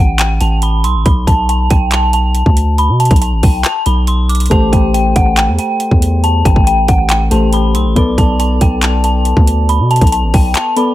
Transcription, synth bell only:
0.00 0.17 F#5 medium
0.19 0.38 G5 medium
0.41 0.60 A5 medium
0.63 0.82 B5 medium
0.84 1.03 C6 medium
1.05 1.25 B5 medium
1.27 1.46 A5 medium
1.49 1.68 A5 medium
1.71 1.90 G5 medium
1.92 2.11 A5 medium
2.14 2.74 A5 medium
2.78 2.97 B5 medium
3.00 3.19 A5 medium
3.22 3.41 A5 medium
3.43 3.62 G5 medium
3.65 3.84 A5 loud
3.86 4.05 B5 medium
4.08 4.27 C6 medium
4.29 4.48 D6 medium
4.51 4.70 A5 medium
4.73 4.92 G5 medium
4.94 5.13 G5 medium
5.16 5.35 F#5 medium
5.37 5.56 G5 medium
5.59 6.20 G5 medium
6.24 6.43 A5 medium
6.45 6.64 G5 medium
6.67 6.86 G5 medium
6.88 7.07 F#5 medium
7.10 7.29 G5 medium
7.31 7.50 A5 medium
7.53 7.72 B5 medium
7.75 7.94 C6 medium
7.96 8.15 B5 medium
8.18 8.37 A5 medium
8.40 8.59 A5 medium
8.61 8.80 G5 medium
8.83 9.02 A5 medium
9.04 9.65 A5 medium
9.69 9.88 B5 medium
9.91 10.10 A5 medium
10.12 10.31 A5 medium
10.34 10.53 G5 medium
10.55 10.74 A5 medium
10.77 10.95 B5 medium

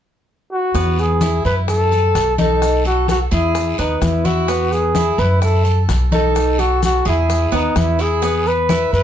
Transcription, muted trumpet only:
0.52 1.01 F#4 loud
1.00 1.45 G#4 medium
1.45 1.56 B4 medium
1.69 2.35 A4 loud
2.40 2.83 A4 loud
2.86 3.08 F#4 medium
3.10 3.20 F#4 medium
3.32 3.76 E4 medium
3.79 4.03 D#4 medium
4.02 4.26 E4 medium
4.25 4.73 F#4 medium
4.72 5.20 G#4 loud
5.19 5.42 B4 medium
5.42 5.82 A4 medium
6.13 6.61 A4 medium
6.59 6.83 F#4 medium
6.84 7.05 F#4 medium
7.08 7.56 E4 medium
7.54 7.78 D#4 medium
7.76 8.03 E4 medium
8.01 8.49 G#4 medium
8.47 8.93 B4 loud
8.94 9.03 B4 loud

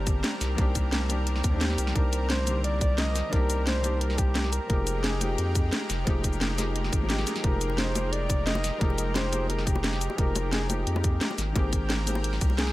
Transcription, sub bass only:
0.00 0.23 G1 loud
0.41 0.57 C2 loud
0.58 1.43 C2 loud
1.44 1.77 D#2 loud
1.78 1.94 C2 medium
1.96 3.23 C2 loud
3.33 4.60 C2 loud
4.70 5.37 F1 loud
5.38 5.71 F2 loud
5.90 6.05 F1 loud
6.07 6.91 F1 loud
6.93 7.25 G#1 loud
7.44 8.71 F1 loud
8.81 10.08 F1 loud
10.18 10.86 F1 loud
10.87 11.20 F2 loud
11.38 11.54 G#1 loud
11.56 12.40 G#1 loud
12.41 12.73 C2 loud

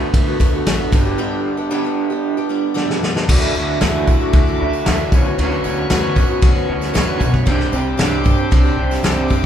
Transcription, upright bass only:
0.14 0.35 D2 loud
0.40 0.61 D2 medium
0.66 0.87 A1 medium
0.93 1.14 G1 medium
3.29 3.51 D2 medium
3.55 3.77 D2 medium
3.82 4.03 D2 medium
4.08 4.29 A2 medium
4.33 4.55 D2 loud
4.61 4.82 D2 medium
4.87 5.09 D2 medium
5.12 5.34 D2 medium
5.39 5.60 D2 loud
5.65 5.86 D2 medium
5.90 6.12 D2 loud
6.17 6.38 A2 medium
6.42 6.64 D2 medium
6.69 6.91 D2 medium
6.96 7.17 D2 medium
7.21 7.43 B1 medium
7.47 7.69 C2 medium
7.73 7.95 C2 medium
7.99 8.21 C2 loud
8.26 8.48 G2 medium
8.52 8.74 C2 medium
8.77 8.99 C2 medium
9.03 9.25 C2 medium
9.31 9.46 F#1 medium

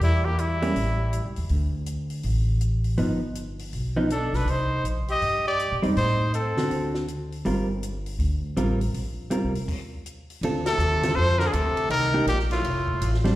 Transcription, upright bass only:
0.00 0.71 E2 medium
0.75 1.21 A1 medium
1.25 1.37 C#2 medium
1.38 1.49 D#2 medium
1.50 2.21 D2 medium
2.24 2.95 A1 medium
2.99 3.69 G1 medium
3.73 4.30 B1 medium
4.33 4.44 B1 medium
4.45 4.81 C2 medium
4.84 5.19 A#1 medium
5.22 5.68 G2 medium
5.72 5.83 A#2 medium
5.85 5.96 E2 medium
5.97 6.54 A2 medium
6.57 muted upright bass stroke soft
6.71 7.42 D2 medium
7.45 8.16 G1 medium
8.19 8.54 D2 medium
8.56 8.91 A1 medium
8.94 9.40 A#1 medium
9.44 9.55 C2 medium
9.56 9.68 D2 medium
10.41 10.78 D2 medium
10.78 11.15 D#2 medium
11.17 11.53 F2 medium
11.54 11.89 D2 medium
11.89 12.26 C2 medium
12.26 12.62 A#1 medium
12.62 12.99 F1 medium
13.01 13.36 A1 medium

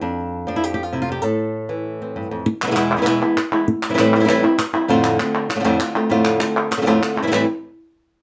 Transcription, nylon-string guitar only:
0.01 1.22 F2 medium
0.01 0.47 D4 medium
0.47 1.21 F3 medium
0.47 0.86 D4 medium
0.56 0.64 E4 medium
0.64 0.73 G4 medium
0.74 0.83 G4 medium
0.83 0.93 F4 loud
0.93 1.21 C3 medium
0.93 1.01 E4 loud
1.02 1.11 F4 medium
1.09 1.22 D4 medium
1.09 1.22 G4 medium
1.22 2.45 A2 medium
1.22 2.44 A4 loud
1.69 2.43 E3 medium
2.02 2.44 C4 soft
2.16 2.31 G2 medium
2.31 2.46 F2 medium
2.46 muted nylon-string guitar stroke medium
2.62 2.65 B2 medium
2.62 2.66 E3 medium
2.62 2.66 G#3 medium
2.62 2.66 B3 medium
2.62 2.67 E4 medium
2.66 2.70 B2 medium
2.66 2.70 E3 medium
2.66 2.71 G#3 medium
2.66 2.71 B3 medium
2.66 2.71 E4 medium
2.71 2.75 B2 medium
2.71 2.75 E3 medium
2.71 2.75 G#3 medium
2.71 2.75 B3 medium
2.71 2.76 E4 medium
2.75 3.05 E2 medium
2.75 2.95 B2 medium
2.75 2.96 E3 medium
2.75 2.97 G#3 loud
2.75 2.97 B3 loud
2.75 2.97 E4 loud
2.97 3.01 B2 medium
2.97 3.01 E3 medium
2.97 3.01 G#3 medium
2.97 3.01 B3 medium
2.97 3.02 E4 medium
3.02 3.05 B2 medium
3.02 3.05 E3 medium
3.02 3.06 G#3 medium
3.02 3.06 B3 medium
3.02 3.06 E4 medium
3.06 3.21 E2 loud
3.06 3.21 B2 loud
3.06 3.21 E3 loud
3.06 3.21 G#3 medium
3.06 3.21 B3 loud
3.06 3.20 E4 loud
3.21 3.36 E3 soft
3.21 3.36 G#3 medium
3.21 3.36 B3 medium
3.21 3.36 E4 medium
3.37 muted nylon-string guitar stroke medium
3.52 3.67 E3 soft
3.52 3.67 G#3 medium
3.52 3.67 B3 soft
3.52 3.66 E4 medium
3.68 muted nylon-string guitar stroke medium
3.90 3.93 E3 medium
3.90 3.93 G3 medium
3.90 3.94 C4 medium
3.90 3.94 E4 medium
3.94 3.98 E3 medium
3.94 3.98 G3 medium
3.94 3.98 C4 medium
3.94 3.98 E4 medium
3.98 4.28 A2 medium
3.98 4.14 E3 loud
3.98 4.15 G3 loud
3.98 4.15 C4 medium
3.98 4.15 E4 loud
4.16 4.19 E3 medium
4.16 4.19 G3 medium
4.16 4.19 C4 medium
4.16 4.20 E4 medium
4.20 4.23 E3 medium
4.20 4.24 G3 medium
4.20 4.24 C4 medium
4.20 4.25 E4 medium
4.24 4.28 E3 medium
4.24 4.28 G3 medium
4.24 4.29 C4 medium
4.24 4.29 E4 medium
4.29 4.43 A2 medium
4.29 4.43 E3 medium
4.29 4.43 G3 loud
4.29 4.43 C4 loud
4.29 4.42 E4 loud
4.43 4.58 G3 medium
4.43 4.58 C4 medium
4.43 4.58 E4 medium
4.58 muted nylon-string guitar stroke medium
4.73 4.89 G3 soft
4.73 4.88 C4 medium
4.73 4.88 E4 medium
4.88 5.18 F2 loud
4.88 5.18 A2 medium
4.88 5.19 D3 loud
4.88 5.19 A3 loud
4.88 5.18 C4 loud
4.88 5.18 F4 loud
5.19 5.49 D3 medium
5.19 5.49 A3 medium
5.19 5.49 C4 medium
5.19 5.49 F4 medium
5.49 muted nylon-string guitar stroke medium
5.55 5.59 A2 medium
5.55 5.59 D3 medium
5.55 5.59 A3 medium
5.55 5.59 C4 medium
5.55 5.60 F4 medium
5.60 5.63 A2 medium
5.60 5.64 D3 medium
5.60 5.63 A3 medium
5.60 5.64 C4 medium
5.60 5.64 F4 medium
5.64 5.79 F2 loud
5.64 5.79 A2 medium
5.64 5.78 D3 loud
5.64 5.79 A3 medium
5.64 5.79 C4 loud
5.64 5.80 F4 loud
5.79 5.94 D3 medium
5.79 5.95 A3 medium
5.79 5.95 C4 medium
5.79 5.94 F4 medium
5.95 6.09 D3 soft
5.95 6.10 A3 medium
5.95 6.10 C4 medium
5.95 6.10 F4 medium
6.09 6.40 F2 medium
6.09 6.40 A2 loud
6.09 6.40 D3 medium
6.09 6.40 A3 medium
6.09 6.40 C4 loud
6.09 6.39 F4 loud
6.40 6.70 D3 medium
6.40 6.71 A3 medium
6.40 6.70 C4 medium
6.40 6.70 F4 medium
6.71 muted nylon-string guitar stroke medium
6.77 6.81 A2 medium
6.77 6.81 D3 medium
6.77 6.81 A3 medium
6.77 6.81 C4 medium
6.77 6.82 F4 medium
6.82 6.86 A2 medium
6.82 6.86 D3 medium
6.82 6.86 A3 medium
6.82 6.86 C4 medium
6.82 6.86 F4 medium
6.86 7.01 F2 medium
6.86 7.01 A2 medium
6.86 7.00 D3 medium
6.86 7.00 A3 loud
6.86 7.01 C4 loud
6.86 7.01 F4 loud
7.01 7.16 D3 medium
7.01 7.16 A3 medium
7.01 7.16 C4 medium
7.01 7.15 F4 medium
7.16 7.22 D3 soft
7.16 7.22 A3 soft
7.16 7.22 C4 soft
7.16 7.23 F4 medium
7.22 7.26 E3 medium
7.22 7.26 G3 medium
7.22 7.27 C4 medium
7.22 7.27 E4 medium
7.27 7.30 E3 medium
7.27 7.31 G3 medium
7.27 7.31 C4 medium
7.27 7.31 E4 medium
7.32 7.44 A2 medium
7.32 7.44 E3 loud
7.32 7.44 G3 medium
7.32 7.44 C4 loud
7.32 7.44 E4 loud

